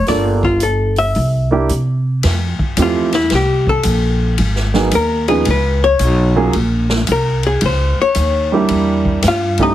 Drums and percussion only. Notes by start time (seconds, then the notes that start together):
0.07 snare, open hi-hat
0.43 kick
0.60 closed hi-hat
0.96 open hi-hat
1.15 open hi-hat
1.69 closed hi-hat
2.23 snare, ride
2.59 kick
2.77 hi-hat pedal, ride
3.13 snare, ride
3.30 snare, ride
3.67 kick
3.83 hi-hat pedal, ride
4.38 ride
4.56 snare
4.74 snare
4.91 hi-hat pedal, ride
5.28 ride
5.45 ride
5.99 hi-hat pedal, ride
6.53 ride
6.90 snare
7.07 hi-hat pedal, ride
7.43 ride
7.61 ride
8.15 hi-hat pedal, ride
8.69 ride
9.05 kick
9.23 snare, hi-hat pedal, ride
9.58 kick, ride